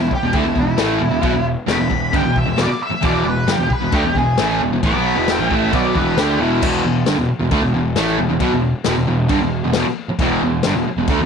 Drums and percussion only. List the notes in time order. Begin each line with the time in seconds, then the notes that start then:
0.11 kick
0.33 kick, crash
0.56 kick
0.78 snare, crash
1.23 kick, crash
1.68 snare, crash
1.91 kick
2.13 kick, crash
2.36 kick
2.58 snare, crash
3.03 kick, crash
3.48 snare, crash
3.70 kick
3.92 kick, crash
4.15 kick
4.38 snare, crash
4.83 kick, crash
5.28 snare, crash
5.51 kick
5.73 kick, crash
5.95 kick
6.17 snare, crash
6.62 kick, crash
7.06 snare, crash
7.51 kick, crash
7.96 snare, crash
8.40 kick, crash
8.84 snare, crash
9.29 kick, crash
9.73 snare, crash
10.19 kick, crash
10.63 snare, crash
11.08 kick, crash